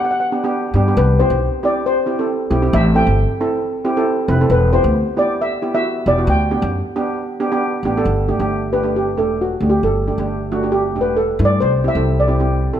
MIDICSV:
0, 0, Header, 1, 4, 480
1, 0, Start_track
1, 0, Key_signature, 1, "major"
1, 0, Tempo, 443459
1, 1047, Time_signature, 4, 2, 24, 8
1, 13853, End_track
2, 0, Start_track
2, 0, Title_t, "Steel pan"
2, 0, Program_c, 0, 114
2, 50, Note_on_c, 0, 78, 64
2, 107, Note_off_c, 0, 78, 0
2, 119, Note_on_c, 0, 78, 68
2, 190, Note_off_c, 0, 78, 0
2, 216, Note_on_c, 0, 78, 63
2, 277, Note_off_c, 0, 78, 0
2, 1053, Note_on_c, 0, 71, 73
2, 1273, Note_off_c, 0, 71, 0
2, 1293, Note_on_c, 0, 72, 81
2, 1783, Note_off_c, 0, 72, 0
2, 1786, Note_on_c, 0, 74, 77
2, 2016, Note_on_c, 0, 72, 85
2, 2022, Note_off_c, 0, 74, 0
2, 2968, Note_on_c, 0, 76, 97
2, 2997, Note_off_c, 0, 72, 0
2, 3203, Note_on_c, 0, 79, 92
2, 3212, Note_off_c, 0, 76, 0
2, 3648, Note_off_c, 0, 79, 0
2, 4885, Note_on_c, 0, 71, 85
2, 4992, Note_off_c, 0, 71, 0
2, 5117, Note_on_c, 0, 72, 77
2, 5613, Note_off_c, 0, 72, 0
2, 5613, Note_on_c, 0, 74, 86
2, 5853, Note_off_c, 0, 74, 0
2, 5862, Note_on_c, 0, 76, 86
2, 6206, Note_off_c, 0, 76, 0
2, 6219, Note_on_c, 0, 76, 94
2, 6576, Note_off_c, 0, 76, 0
2, 6579, Note_on_c, 0, 74, 89
2, 6683, Note_off_c, 0, 74, 0
2, 6816, Note_on_c, 0, 79, 88
2, 8206, Note_off_c, 0, 79, 0
2, 9446, Note_on_c, 0, 71, 74
2, 9692, Note_off_c, 0, 71, 0
2, 9701, Note_on_c, 0, 67, 69
2, 9917, Note_off_c, 0, 67, 0
2, 9941, Note_on_c, 0, 69, 71
2, 10045, Note_off_c, 0, 69, 0
2, 10190, Note_on_c, 0, 66, 72
2, 10495, Note_on_c, 0, 67, 73
2, 10508, Note_off_c, 0, 66, 0
2, 10565, Note_off_c, 0, 67, 0
2, 10653, Note_on_c, 0, 69, 77
2, 11602, Note_on_c, 0, 67, 84
2, 11641, Note_off_c, 0, 69, 0
2, 11917, Note_on_c, 0, 71, 75
2, 11936, Note_off_c, 0, 67, 0
2, 12086, Note_on_c, 0, 69, 80
2, 12089, Note_off_c, 0, 71, 0
2, 12386, Note_off_c, 0, 69, 0
2, 12394, Note_on_c, 0, 74, 94
2, 12551, Note_off_c, 0, 74, 0
2, 12560, Note_on_c, 0, 72, 93
2, 12859, Note_on_c, 0, 76, 91
2, 12896, Note_off_c, 0, 72, 0
2, 13203, Note_on_c, 0, 74, 82
2, 13206, Note_off_c, 0, 76, 0
2, 13853, Note_off_c, 0, 74, 0
2, 13853, End_track
3, 0, Start_track
3, 0, Title_t, "Steel pan"
3, 0, Program_c, 1, 114
3, 0, Note_on_c, 1, 59, 72
3, 0, Note_on_c, 1, 62, 65
3, 0, Note_on_c, 1, 67, 80
3, 147, Note_off_c, 1, 62, 0
3, 147, Note_off_c, 1, 67, 0
3, 150, Note_off_c, 1, 59, 0
3, 344, Note_on_c, 1, 62, 61
3, 347, Note_on_c, 1, 59, 68
3, 350, Note_on_c, 1, 67, 69
3, 412, Note_off_c, 1, 62, 0
3, 414, Note_off_c, 1, 59, 0
3, 416, Note_off_c, 1, 67, 0
3, 473, Note_on_c, 1, 59, 81
3, 475, Note_on_c, 1, 62, 72
3, 483, Note_on_c, 1, 67, 85
3, 678, Note_off_c, 1, 59, 0
3, 679, Note_off_c, 1, 62, 0
3, 683, Note_off_c, 1, 67, 0
3, 812, Note_on_c, 1, 59, 79
3, 817, Note_on_c, 1, 62, 73
3, 817, Note_on_c, 1, 67, 88
3, 886, Note_off_c, 1, 59, 0
3, 888, Note_off_c, 1, 62, 0
3, 888, Note_off_c, 1, 67, 0
3, 948, Note_on_c, 1, 62, 67
3, 954, Note_on_c, 1, 67, 80
3, 955, Note_on_c, 1, 59, 68
3, 1054, Note_off_c, 1, 62, 0
3, 1057, Note_off_c, 1, 59, 0
3, 1057, Note_off_c, 1, 67, 0
3, 1302, Note_on_c, 1, 60, 70
3, 1303, Note_on_c, 1, 67, 76
3, 1304, Note_on_c, 1, 64, 63
3, 1584, Note_off_c, 1, 60, 0
3, 1585, Note_off_c, 1, 64, 0
3, 1585, Note_off_c, 1, 67, 0
3, 1766, Note_on_c, 1, 67, 79
3, 1767, Note_on_c, 1, 64, 65
3, 1770, Note_on_c, 1, 60, 71
3, 2056, Note_off_c, 1, 64, 0
3, 2056, Note_off_c, 1, 67, 0
3, 2057, Note_off_c, 1, 60, 0
3, 2231, Note_on_c, 1, 60, 69
3, 2239, Note_on_c, 1, 64, 65
3, 2239, Note_on_c, 1, 67, 76
3, 2314, Note_off_c, 1, 60, 0
3, 2318, Note_off_c, 1, 64, 0
3, 2318, Note_off_c, 1, 67, 0
3, 2369, Note_on_c, 1, 64, 58
3, 2370, Note_on_c, 1, 60, 72
3, 2370, Note_on_c, 1, 69, 78
3, 2584, Note_off_c, 1, 60, 0
3, 2584, Note_off_c, 1, 64, 0
3, 2585, Note_off_c, 1, 69, 0
3, 2712, Note_on_c, 1, 67, 90
3, 2716, Note_on_c, 1, 60, 82
3, 2716, Note_on_c, 1, 64, 77
3, 2794, Note_off_c, 1, 67, 0
3, 2796, Note_off_c, 1, 60, 0
3, 2796, Note_off_c, 1, 64, 0
3, 2839, Note_on_c, 1, 67, 81
3, 2842, Note_on_c, 1, 60, 75
3, 2842, Note_on_c, 1, 64, 67
3, 2957, Note_off_c, 1, 67, 0
3, 2959, Note_off_c, 1, 60, 0
3, 2959, Note_off_c, 1, 64, 0
3, 3192, Note_on_c, 1, 64, 65
3, 3192, Note_on_c, 1, 69, 78
3, 3195, Note_on_c, 1, 60, 74
3, 3488, Note_off_c, 1, 64, 0
3, 3488, Note_off_c, 1, 69, 0
3, 3489, Note_off_c, 1, 60, 0
3, 3686, Note_on_c, 1, 60, 74
3, 3689, Note_on_c, 1, 69, 84
3, 3690, Note_on_c, 1, 64, 72
3, 3974, Note_off_c, 1, 60, 0
3, 3976, Note_off_c, 1, 64, 0
3, 3976, Note_off_c, 1, 69, 0
3, 4165, Note_on_c, 1, 60, 86
3, 4166, Note_on_c, 1, 64, 74
3, 4166, Note_on_c, 1, 67, 97
3, 4239, Note_off_c, 1, 60, 0
3, 4239, Note_off_c, 1, 67, 0
3, 4240, Note_off_c, 1, 64, 0
3, 4297, Note_on_c, 1, 60, 86
3, 4297, Note_on_c, 1, 69, 93
3, 4299, Note_on_c, 1, 64, 78
3, 4507, Note_off_c, 1, 60, 0
3, 4507, Note_off_c, 1, 69, 0
3, 4508, Note_off_c, 1, 64, 0
3, 4639, Note_on_c, 1, 71, 95
3, 4645, Note_on_c, 1, 60, 81
3, 4647, Note_on_c, 1, 64, 73
3, 4716, Note_off_c, 1, 71, 0
3, 4719, Note_off_c, 1, 60, 0
3, 4720, Note_off_c, 1, 64, 0
3, 4774, Note_on_c, 1, 69, 83
3, 4775, Note_on_c, 1, 60, 74
3, 4775, Note_on_c, 1, 64, 67
3, 4884, Note_off_c, 1, 60, 0
3, 4884, Note_off_c, 1, 64, 0
3, 4884, Note_off_c, 1, 69, 0
3, 5125, Note_on_c, 1, 67, 85
3, 5127, Note_on_c, 1, 64, 69
3, 5128, Note_on_c, 1, 59, 76
3, 5413, Note_off_c, 1, 67, 0
3, 5414, Note_off_c, 1, 64, 0
3, 5415, Note_off_c, 1, 59, 0
3, 5595, Note_on_c, 1, 64, 68
3, 5597, Note_on_c, 1, 67, 82
3, 5599, Note_on_c, 1, 59, 69
3, 5888, Note_off_c, 1, 64, 0
3, 5889, Note_off_c, 1, 67, 0
3, 5890, Note_off_c, 1, 59, 0
3, 6087, Note_on_c, 1, 64, 62
3, 6087, Note_on_c, 1, 67, 72
3, 6093, Note_on_c, 1, 59, 71
3, 6160, Note_off_c, 1, 64, 0
3, 6160, Note_off_c, 1, 67, 0
3, 6163, Note_off_c, 1, 59, 0
3, 6212, Note_on_c, 1, 59, 69
3, 6220, Note_on_c, 1, 66, 76
3, 6222, Note_on_c, 1, 64, 64
3, 6424, Note_off_c, 1, 59, 0
3, 6428, Note_off_c, 1, 66, 0
3, 6429, Note_off_c, 1, 64, 0
3, 6571, Note_on_c, 1, 59, 74
3, 6571, Note_on_c, 1, 64, 61
3, 6574, Note_on_c, 1, 67, 76
3, 6642, Note_off_c, 1, 59, 0
3, 6642, Note_off_c, 1, 64, 0
3, 6643, Note_off_c, 1, 67, 0
3, 6690, Note_on_c, 1, 59, 73
3, 6694, Note_on_c, 1, 66, 82
3, 6698, Note_on_c, 1, 64, 70
3, 6801, Note_off_c, 1, 59, 0
3, 6804, Note_off_c, 1, 66, 0
3, 6805, Note_off_c, 1, 64, 0
3, 7049, Note_on_c, 1, 62, 63
3, 7049, Note_on_c, 1, 67, 79
3, 7052, Note_on_c, 1, 59, 71
3, 7335, Note_off_c, 1, 67, 0
3, 7336, Note_off_c, 1, 62, 0
3, 7337, Note_off_c, 1, 59, 0
3, 7533, Note_on_c, 1, 59, 82
3, 7534, Note_on_c, 1, 67, 87
3, 7538, Note_on_c, 1, 62, 78
3, 7818, Note_off_c, 1, 59, 0
3, 7818, Note_off_c, 1, 67, 0
3, 7820, Note_off_c, 1, 62, 0
3, 8011, Note_on_c, 1, 62, 76
3, 8011, Note_on_c, 1, 67, 96
3, 8015, Note_on_c, 1, 59, 82
3, 8082, Note_off_c, 1, 62, 0
3, 8082, Note_off_c, 1, 67, 0
3, 8084, Note_off_c, 1, 59, 0
3, 8138, Note_on_c, 1, 59, 86
3, 8139, Note_on_c, 1, 67, 96
3, 8141, Note_on_c, 1, 62, 76
3, 8348, Note_off_c, 1, 59, 0
3, 8348, Note_off_c, 1, 67, 0
3, 8349, Note_off_c, 1, 62, 0
3, 8499, Note_on_c, 1, 67, 91
3, 8501, Note_on_c, 1, 59, 75
3, 8502, Note_on_c, 1, 62, 77
3, 8566, Note_off_c, 1, 67, 0
3, 8567, Note_off_c, 1, 59, 0
3, 8568, Note_off_c, 1, 62, 0
3, 8630, Note_on_c, 1, 62, 79
3, 8631, Note_on_c, 1, 59, 83
3, 8634, Note_on_c, 1, 69, 93
3, 8733, Note_off_c, 1, 59, 0
3, 8733, Note_off_c, 1, 62, 0
3, 8735, Note_off_c, 1, 69, 0
3, 8965, Note_on_c, 1, 57, 78
3, 8967, Note_on_c, 1, 62, 67
3, 8970, Note_on_c, 1, 67, 85
3, 9040, Note_off_c, 1, 57, 0
3, 9041, Note_off_c, 1, 62, 0
3, 9043, Note_off_c, 1, 67, 0
3, 9090, Note_on_c, 1, 62, 69
3, 9094, Note_on_c, 1, 57, 75
3, 9094, Note_on_c, 1, 67, 84
3, 9305, Note_off_c, 1, 62, 0
3, 9307, Note_off_c, 1, 57, 0
3, 9307, Note_off_c, 1, 67, 0
3, 9449, Note_on_c, 1, 57, 65
3, 9449, Note_on_c, 1, 67, 78
3, 9451, Note_on_c, 1, 62, 57
3, 9523, Note_off_c, 1, 57, 0
3, 9523, Note_off_c, 1, 67, 0
3, 9524, Note_off_c, 1, 62, 0
3, 9560, Note_on_c, 1, 57, 68
3, 9564, Note_on_c, 1, 67, 75
3, 9565, Note_on_c, 1, 62, 64
3, 9781, Note_off_c, 1, 57, 0
3, 9782, Note_off_c, 1, 67, 0
3, 9783, Note_off_c, 1, 62, 0
3, 9928, Note_on_c, 1, 57, 65
3, 9929, Note_on_c, 1, 62, 62
3, 9932, Note_on_c, 1, 67, 75
3, 10218, Note_off_c, 1, 57, 0
3, 10219, Note_off_c, 1, 62, 0
3, 10220, Note_off_c, 1, 67, 0
3, 10416, Note_on_c, 1, 57, 66
3, 10416, Note_on_c, 1, 62, 56
3, 10417, Note_on_c, 1, 67, 65
3, 10702, Note_off_c, 1, 57, 0
3, 10702, Note_off_c, 1, 62, 0
3, 10703, Note_off_c, 1, 67, 0
3, 10905, Note_on_c, 1, 62, 60
3, 10907, Note_on_c, 1, 67, 75
3, 10908, Note_on_c, 1, 57, 65
3, 10972, Note_off_c, 1, 62, 0
3, 10974, Note_off_c, 1, 57, 0
3, 10974, Note_off_c, 1, 67, 0
3, 11029, Note_on_c, 1, 62, 64
3, 11036, Note_on_c, 1, 67, 68
3, 11039, Note_on_c, 1, 57, 64
3, 11237, Note_off_c, 1, 62, 0
3, 11240, Note_off_c, 1, 67, 0
3, 11242, Note_off_c, 1, 57, 0
3, 11383, Note_on_c, 1, 57, 83
3, 11386, Note_on_c, 1, 66, 88
3, 11390, Note_on_c, 1, 62, 71
3, 11452, Note_off_c, 1, 57, 0
3, 11454, Note_off_c, 1, 66, 0
3, 11455, Note_off_c, 1, 62, 0
3, 11508, Note_on_c, 1, 67, 73
3, 11510, Note_on_c, 1, 57, 68
3, 11512, Note_on_c, 1, 62, 67
3, 11717, Note_off_c, 1, 67, 0
3, 11718, Note_off_c, 1, 57, 0
3, 11719, Note_off_c, 1, 62, 0
3, 11861, Note_on_c, 1, 67, 77
3, 11864, Note_on_c, 1, 57, 67
3, 11867, Note_on_c, 1, 62, 58
3, 12147, Note_off_c, 1, 67, 0
3, 12148, Note_off_c, 1, 57, 0
3, 12149, Note_off_c, 1, 62, 0
3, 12331, Note_on_c, 1, 62, 62
3, 12336, Note_on_c, 1, 64, 77
3, 12338, Note_on_c, 1, 57, 68
3, 12571, Note_off_c, 1, 62, 0
3, 12574, Note_off_c, 1, 57, 0
3, 12574, Note_off_c, 1, 64, 0
3, 12818, Note_on_c, 1, 60, 66
3, 12818, Note_on_c, 1, 67, 77
3, 12821, Note_on_c, 1, 64, 64
3, 12891, Note_off_c, 1, 60, 0
3, 12891, Note_off_c, 1, 67, 0
3, 12892, Note_off_c, 1, 64, 0
3, 12949, Note_on_c, 1, 69, 70
3, 12950, Note_on_c, 1, 60, 68
3, 12952, Note_on_c, 1, 64, 66
3, 13159, Note_off_c, 1, 60, 0
3, 13159, Note_off_c, 1, 69, 0
3, 13160, Note_off_c, 1, 64, 0
3, 13291, Note_on_c, 1, 60, 70
3, 13291, Note_on_c, 1, 64, 66
3, 13295, Note_on_c, 1, 67, 74
3, 13368, Note_off_c, 1, 60, 0
3, 13368, Note_off_c, 1, 64, 0
3, 13370, Note_off_c, 1, 67, 0
3, 13418, Note_on_c, 1, 64, 64
3, 13422, Note_on_c, 1, 67, 76
3, 13423, Note_on_c, 1, 60, 68
3, 13633, Note_off_c, 1, 64, 0
3, 13636, Note_off_c, 1, 60, 0
3, 13636, Note_off_c, 1, 67, 0
3, 13783, Note_on_c, 1, 60, 62
3, 13783, Note_on_c, 1, 69, 75
3, 13785, Note_on_c, 1, 64, 61
3, 13853, Note_off_c, 1, 60, 0
3, 13853, Note_off_c, 1, 64, 0
3, 13853, Note_off_c, 1, 69, 0
3, 13853, End_track
4, 0, Start_track
4, 0, Title_t, "Upright bass"
4, 0, Program_c, 2, 32
4, 796, Note_on_c, 2, 43, 86
4, 994, Note_off_c, 2, 43, 0
4, 1048, Note_on_c, 2, 36, 102
4, 1343, Note_off_c, 2, 36, 0
4, 1408, Note_on_c, 2, 35, 92
4, 1603, Note_off_c, 2, 35, 0
4, 2711, Note_on_c, 2, 35, 84
4, 2909, Note_off_c, 2, 35, 0
4, 2957, Note_on_c, 2, 33, 105
4, 3255, Note_off_c, 2, 33, 0
4, 3319, Note_on_c, 2, 31, 92
4, 3517, Note_off_c, 2, 31, 0
4, 4635, Note_on_c, 2, 29, 89
4, 4831, Note_off_c, 2, 29, 0
4, 4867, Note_on_c, 2, 28, 95
4, 5168, Note_off_c, 2, 28, 0
4, 5238, Note_on_c, 2, 38, 95
4, 5435, Note_off_c, 2, 38, 0
4, 6560, Note_on_c, 2, 28, 86
4, 6753, Note_off_c, 2, 28, 0
4, 6788, Note_on_c, 2, 38, 95
4, 7089, Note_off_c, 2, 38, 0
4, 7166, Note_on_c, 2, 42, 91
4, 7360, Note_off_c, 2, 42, 0
4, 8474, Note_on_c, 2, 33, 80
4, 8671, Note_off_c, 2, 33, 0
4, 8717, Note_on_c, 2, 31, 89
4, 9016, Note_off_c, 2, 31, 0
4, 9086, Note_on_c, 2, 31, 74
4, 9930, Note_off_c, 2, 31, 0
4, 9930, Note_on_c, 2, 28, 80
4, 10316, Note_off_c, 2, 28, 0
4, 10396, Note_on_c, 2, 38, 84
4, 10594, Note_off_c, 2, 38, 0
4, 10640, Note_on_c, 2, 31, 83
4, 10940, Note_off_c, 2, 31, 0
4, 11017, Note_on_c, 2, 31, 80
4, 11845, Note_off_c, 2, 31, 0
4, 11845, Note_on_c, 2, 28, 80
4, 12235, Note_off_c, 2, 28, 0
4, 12330, Note_on_c, 2, 43, 93
4, 12524, Note_off_c, 2, 43, 0
4, 12573, Note_on_c, 2, 36, 84
4, 12869, Note_off_c, 2, 36, 0
4, 12935, Note_on_c, 2, 36, 85
4, 13768, Note_off_c, 2, 36, 0
4, 13768, Note_on_c, 2, 33, 77
4, 13853, Note_off_c, 2, 33, 0
4, 13853, End_track
0, 0, End_of_file